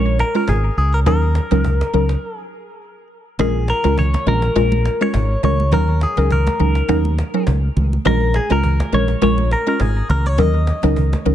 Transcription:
Already playing: fingered electric bass A#1, synth pluck G#3 C#4 F4 A#4, clean electric guitar C#5
0.19 clean electric guitar A#4, cajon slap
0.35 synth pluck G#3 C#4 F4 A#4, clean electric guitar A#4, cajon slap
0.48 fingered electric bass G#1, clean electric guitar G#4, cajon bass, cajon slap
0.77 fingered electric bass C#2, clean electric guitar G#4, cajon slap
0.94 clean electric guitar A#4, cajon slap
1.06 fingered electric bass D#2, synth pluck F#3 C#4 D#4 A#4, clean electric guitar A#4, cajon bass
1.35 cajon slap
1.51 fingered electric bass C#2, synth pluck F#3 C#4 D#4 A#4, cajon slap
1.64 cajon bass
1.81 cajon slap
1.93 fingered electric bass C#2, synth pluck F#3 C#4 D#4 A#4
2.09 cajon slap
2.37 clean electric guitar G#4
3.39 fingered electric bass A#1, synth pluck G#3 C#4 F4 A#4, clean electric guitar G#4, cajon bass, low conga
3.68 clean electric guitar A#4, cajon slap
3.84 fingered electric bass C#2, synth pluck G#3 C#4 F4 A#4, cajon slap
3.97 clean electric guitar C#5, cajon bass, low conga
4.14 cajon slap, high conga
4.26 fingered electric bass A#1, synth pluck G#3 C#4 F4 A#4, clean electric guitar A#4, low conga
4.42 cajon slap
4.56 fingered electric bass A#1, synth pluck G#3 C#4 F4 A#4, cajon bass
4.72 high conga
4.85 cajon slap
5.01 synth pluck G#3 C#4 F4 A#4, clean electric guitar C#5
5.14 fingered electric bass G#1, cajon bass, cajon slap
5.43 fingered electric bass C#2, synth pluck G#3 C#4 F4 A#4, clean electric guitar C#5, high conga, low conga
5.60 high conga
5.72 fingered electric bass D#2, synth pluck F#3 C#4 D#4 A#4, clean electric guitar A#4, cajon bass, low conga
6.01 clean electric guitar G#4, cajon slap
6.17 fingered electric bass C#2, synth pluck F#3 C#4 D#4 A#4, cajon slap
6.31 clean electric guitar A#4, cajon bass, low conga
6.47 cajon slap, high conga
6.59 fingered electric bass C#2, synth pluck F#3 C#4 D#4 A#4, low conga
6.75 cajon slap
6.89 fingered electric bass D#2, synth pluck F#3 C#4 D#4 A#4, cajon bass
7.05 high conga
7.18 cajon slap
7.34 synth pluck F#3 C#4 D#4 A#4, cajon slap
7.47 fingered electric bass C#2, cajon bass, cajon slap
7.76 fingered electric bass C#2, cajon slap, high conga, low conga
7.93 cajon slap, high conga
8.05 fingered electric bass A#1, synth pluck G#3 C#4 F4 A#4, clean electric guitar A#4, cajon bass, low conga
8.34 clean electric guitar G#4, cajon slap
8.50 fingered electric bass C#2, synth pluck G#3 C#4 F4 A#4, clean electric guitar A#4, cajon slap
8.63 cajon bass, low conga
8.80 cajon slap, high conga
8.92 fingered electric bass A#1, synth pluck G#3 C#4 F4 A#4, clean electric guitar C#5, low conga
9.08 cajon slap
9.22 fingered electric bass A#1, synth pluck G#3 C#4 F4 A#4, clean electric guitar C#5, cajon bass
9.38 high conga
9.51 clean electric guitar A#4, cajon slap
9.67 synth pluck G#3 C#4 F4 A#4, clean electric guitar A#4, cajon slap
9.80 fingered electric bass G#1, clean electric guitar G#4, cajon bass, cajon slap
10.09 fingered electric bass C#2, clean electric guitar A#4, high conga, low conga
10.26 clean electric guitar C#5, high conga
10.38 fingered electric bass D#2, synth pluck F#3 C#4 D#4 A#4, clean electric guitar D#5, cajon bass, low conga
10.67 cajon slap
10.83 fingered electric bass C#2, synth pluck F#3 C#4 D#4 A#4, cajon slap
10.96 cajon bass, low conga
11.13 cajon slap, high conga
11.25 fingered electric bass C#2, synth pluck F#3 C#4 D#4 A#4, low conga

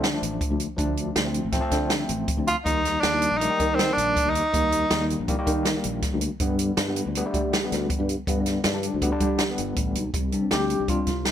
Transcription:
Already playing: fretless electric bass D3
0.04 snare, closed hi-hat
0.13 tine electric piano F3 A3 D4
0.22 fretless electric bass A1, closed hi-hat
0.41 kick, closed hi-hat
0.50 fretless electric bass D2
0.60 closed hi-hat
0.77 fretless electric bass D2, tine electric piano F3 A3 D4, kick, closed hi-hat
0.97 closed hi-hat
1.16 fretless electric bass D2, snare, closed hi-hat
1.25 tine electric piano F3 A3 C4
1.34 closed hi-hat
1.44 fretless electric bass A1
1.52 tine electric piano F3 A3 C4, kick, snare, closed hi-hat
1.61 tine electric piano F3 A3 C4
1.71 fretless electric bass D3, kick, snare, closed hi-hat
1.90 snare, closed hi-hat
1.98 tine electric piano F3 A3 C4
2.09 fretless electric bass A1, closed hi-hat
2.28 kick, closed hi-hat
2.37 fretless electric bass D2
2.47 tenor saxophone F4, closed hi-hat
2.65 fretless electric bass D#2, tine electric piano D#3 G3 A#3, tenor saxophone D#4, kick, closed hi-hat
2.85 snare, closed hi-hat
3.01 fretless electric bass D#2, tenor saxophone D4, snare, closed hi-hat
3.14 tine electric piano D#3 G3 A#3
3.22 closed hi-hat
3.31 fretless electric bass A#1
3.38 tine electric piano D#3 A3, tenor saxophone D#4, closed hi-hat
3.42 tine electric piano G3
3.50 tine electric piano D#3 G3 A#3
3.60 fretless electric bass D#3, kick, closed hi-hat
3.75 tenor saxophone C4, snare, closed hi-hat
3.88 tine electric piano D#3 G3 A#3
3.93 tenor saxophone D4
3.97 fretless electric bass A#1, closed hi-hat
4.16 kick, closed hi-hat
4.25 fretless electric bass D#2
4.30 tenor saxophone D#4
4.35 closed hi-hat
4.53 fretless electric bass D#2, tine electric piano D#3 G3 A#3, kick, closed hi-hat
4.72 closed hi-hat
4.91 fretless electric bass D#2, snare, closed hi-hat
5.01 tine electric piano D#3 G3 A#3
5.10 closed hi-hat
5.20 fretless electric bass A#1
5.28 tine electric piano D#3 G3 A#3, kick, closed hi-hat
5.39 tine electric piano D#3 G3 A#3
5.46 fretless electric bass D#3, kick, closed hi-hat
5.65 snare, closed hi-hat
5.76 tine electric piano D#3 G3 A#3
5.84 fretless electric bass A#1, closed hi-hat
6.02 kick, snare, closed hi-hat
6.13 fretless electric bass D2
6.21 closed hi-hat
6.40 fretless electric bass G2, tine electric piano D3 G3 B3, kick, closed hi-hat
6.59 closed hi-hat
6.77 fretless electric bass G2, snare, closed hi-hat
6.88 tine electric piano D3 G3 B3
6.96 closed hi-hat
7.06 fretless electric bass D2
7.15 tine electric piano D3 G3 B3, closed hi-hat
7.25 tine electric piano D3 G3 A3
7.34 fretless electric bass G3, kick, closed hi-hat
7.53 snare, closed hi-hat
7.63 tine electric piano D3 G3 B3
7.72 fretless electric bass D2, snare, closed hi-hat
7.90 kick, closed hi-hat
7.99 fretless electric bass G2
8.09 closed hi-hat
8.27 fretless electric bass G2, tine electric piano D3 G3 B3, kick, closed hi-hat
8.46 snare, closed hi-hat
8.64 fretless electric bass G2, snare, closed hi-hat
8.73 tine electric piano D3 G3 D4
8.83 closed hi-hat
8.94 fretless electric bass D2
9.02 tine electric piano D3 G3 B3, kick, closed hi-hat
9.12 tine electric piano D3 G3 D4
9.20 fretless electric bass G3, kick, closed hi-hat
9.38 snare, closed hi-hat
9.49 tine electric piano D3 G3 B3
9.58 fretless electric bass G1, closed hi-hat
9.76 fretless electric bass A1, kick, closed hi-hat
9.95 fretless electric bass B1, closed hi-hat
10.14 fretless electric bass C2, kick, closed hi-hat
10.32 tine electric piano G3 C4 D4, closed hi-hat
10.51 fretless electric bass D2, tine electric piano G4, snare, closed hi-hat
10.70 closed hi-hat
10.80 fretless electric bass C2
10.88 tine electric piano G3 C4 D4 F4, kick, closed hi-hat
11.07 fretless electric bass C2, kick, snare, closed hi-hat
11.25 snare, closed hi-hat

